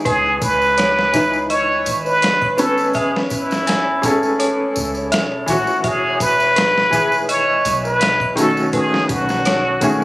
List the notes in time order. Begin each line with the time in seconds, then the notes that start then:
Already playing: E3 D#4 G#4
0.05 C#2 G#4 B4 C#5, kick, closed hi-hat, tambourine
0.42 C#2 B4, kick, closed hi-hat, tambourine
0.62 tambourine
0.78 C#5, snare, closed hi-hat, tambourine
0.99 snare
1.12 E3 D#4 B4, kick, closed hi-hat, tambourine
1.33 tambourine
1.50 C#5 D#5, closed hi-hat, tambourine
1.86 G#1, closed hi-hat, tambourine
2.05 B4, tambourine
2.22 B4, snare, closed hi-hat, tambourine
2.42 kick, triangle
2.57 B3 C#4 A4 B4, closed hi-hat, tambourine
2.78 tambourine
2.93 G#4 E5, kick, closed hi-hat, tambourine, triangle
3.16 snare
3.30 A1 E4, kick, closed hi-hat, tambourine
3.51 snare, tambourine
3.67 G#5, snare, closed hi-hat, tambourine
4.02 C#4 G#4 A4, kick, closed hi-hat, tambourine
4.23 tambourine
4.39 C#5, closed hi-hat, tambourine
4.76 C#2, tambourine
4.95 tambourine
5.12 E1 E5, snare, closed hi-hat, tambourine
5.46 A1 E3 F#4, closed hi-hat, tambourine
5.51 F#4
5.67 tambourine
5.84 E1 G#4 E5, kick, closed hi-hat, tambourine
6.20 E1 B4, kick, closed hi-hat, tambourine
6.40 tambourine
6.56 B4, snare, closed hi-hat, tambourine
6.78 snare
6.91 E3 G#4, kick, closed hi-hat, tambourine
7.12 tambourine
7.29 C#5 D#5, closed hi-hat, tambourine
7.65 B1, closed hi-hat, tambourine
7.85 B4, tambourine
8.01 E5, snare, closed hi-hat, tambourine
8.20 kick, triangle
8.36 D#3 A3 C#4 F#4 A4, closed hi-hat, tambourine
8.57 tambourine
8.73 G#4 B4, kick, closed hi-hat, tambourine, triangle
8.94 snare
9.09 B1 F#4, kick, closed hi-hat, tambourine
9.29 snare, tambourine
9.45 C#5, snare, closed hi-hat, tambourine
9.80 D#3 A3 C#4 G#4, kick, closed hi-hat, tambourine